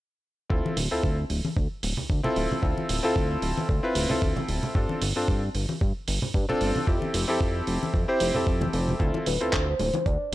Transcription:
0.50 analog synth bass D2, electric grand piano C4 E4 F4 A4, kick
0.66 high conga
0.77 analog synth bass D1, open hi-hat
0.91 analog synth bass D2, electric grand piano C4 E4 F4 A4
1.03 analog synth bass D2, kick
1.30 analog synth bass D1, open hi-hat
1.45 high conga
1.57 analog synth bass D2, kick
1.83 analog synth bass D1, open hi-hat
1.97 analog synth bass D2, low conga
2.10 analog synth bass D2, kick
2.23 electric grand piano C4 E4 F4 A4, low conga
2.36 analog synth bass D1, open hi-hat
2.52 high conga, low conga
2.62 analog synth bass D2, electric grand piano C4 E4 F4 A4, kick
2.78 high conga
2.89 analog synth bass D1, open hi-hat
3.03 analog synth bass D2, electric grand piano C4 E4 F4 A4
3.16 analog synth bass D2, kick
3.42 analog synth bass D1, open hi-hat
3.58 high conga
3.69 analog synth bass D2, kick
3.83 electric grand piano C4 E4 F4 B4
3.95 analog synth bass D1, open hi-hat
4.09 analog synth bass D2, electric grand piano C4 E4 F4 A4, low conga
4.22 analog synth bass D2, kick
4.36 high conga, low conga
4.48 analog synth bass D1, open hi-hat
4.63 low conga
4.75 analog synth bass G2, electric grand piano C4 D4 F4 A4, kick
4.89 high conga
5.02 analog synth bass G1, open hi-hat
5.16 analog synth bass G2, electric grand piano C4 D4 F4 A4
5.28 analog synth bass G2, kick
5.55 analog synth bass G1, open hi-hat
5.69 high conga
5.81 analog synth bass G2, kick
6.08 analog synth bass G1, open hi-hat
6.22 analog synth bass G2, low conga
6.34 analog synth bass G2, kick
6.49 electric grand piano C4 D4 F4 A4, low conga
6.61 analog synth bass G1, open hi-hat
6.76 high conga, low conga
6.87 analog synth bass F2, electric grand piano C4 E4 G4 A4, kick
7.02 high conga
7.14 analog synth bass F1, open hi-hat
7.28 analog synth bass F2, electric grand piano C4 E4 G4 A4
7.41 analog synth bass F2, kick
7.67 analog synth bass F1, open hi-hat
7.83 high conga
7.94 analog synth bass F2, kick
8.08 electric grand piano C4 E4 G4 C5
8.20 analog synth bass F1, open hi-hat
8.34 analog synth bass F2, electric grand piano C4 E4 G4 A4, low conga
8.47 analog synth bass F2, kick
8.61 high conga, low conga
8.73 analog synth bass F1, open hi-hat
8.89 low conga
8.99 analog synth bass D2, electric grand piano C4 E4 F4 A4, kick, closed hi-hat
9.14 high bongo, high conga
9.26 analog synth bass D1, soft synth lead B4, open hi-hat
9.41 analog synth bass D2, electric grand piano C4 E4 F4 A4, closed hi-hat
9.53 analog synth bass D2, soft synth lead C5, kick, clap, closed hi-hat
9.79 analog synth bass D1, open hi-hat, high bongo
9.94 closed hi-hat, high bongo, high conga
10.06 analog synth bass D2, soft synth lead D5, kick, closed hi-hat

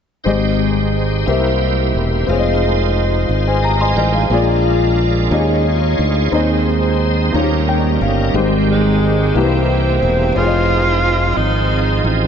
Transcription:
0.24 fingered electric bass G#1, grand piano G#2 C4 G4 G#4 D#5, tonewheel organ G#3 D#4 C5 G5
1.26 fingered electric bass C2, grand piano C3 C4 G4 A#4, tonewheel organ A#3 E4 G4 C5
1.30 grand piano E5
1.95 fingered electric bass E1
2.27 fingered electric bass F1, tonewheel organ G#3 D#4 F4 A#4, grand piano C4 F4 G#4
2.32 grand piano C#5
2.36 tonewheel organ C5, grand piano D#5
3.29 fingered electric bass G#1
3.48 grand piano C5 G#5
3.63 tonewheel organ G4 D#5, grand piano A#5
3.80 tonewheel organ G#4 F5, grand piano D#5 G#5 C6
3.96 fingered electric bass A1, tonewheel organ A#4 G5, grand piano C5 D#5 G#5
4.13 grand piano G#4 F5, tonewheel organ C5 G#5
4.30 fingered electric bass A#1, grand piano A#2 A#3 F4 G#4 D5, tonewheel organ G#3 C#4 F4 A#4
4.37 tonewheel organ D4
5.31 fingered electric bass D#2, tonewheel organ G#3 D#4 F4 C#5, grand piano C#4 D#4 F4 G4 D#5
5.39 grand piano G#4
5.99 fingered electric bass D2
6.32 fingered electric bass D#2, grand piano D#3 C4 D#4 G#4 D#5, tonewheel organ G#3 C4 D#4 C5
7.32 fingered electric bass D#2, grand piano D#3 A#3 D#4 F4 C#5, tonewheel organ G3 C#4 D#4 A#4
7.41 grand piano G4
7.69 grand piano G5
8.01 fingered electric bass G1, grand piano F5
8.34 fingered electric bass G#1, grand piano G#2 G#3 D#4 G4 C5, tonewheel organ D#3 G#3 C4 G4
8.71 tenor saxophone G#3
9.34 fingered electric bass C2, grand piano C3 A#3 E4 G4, tonewheel organ E3 A#3 C4 G4
9.38 tenor saxophone C4, grand piano B4
9.45 grand piano C5
10.03 fingered electric bass E1
10.35 fingered electric bass F1, tonewheel organ F3 C4 D#4 G#4, grand piano C4 F4 G#4, tenor saxophone F4
10.40 grand piano C#5
10.47 grand piano D#5
11.37 fingered electric bass G#1, tenor saxophone D#4
12.04 fingered electric bass A1

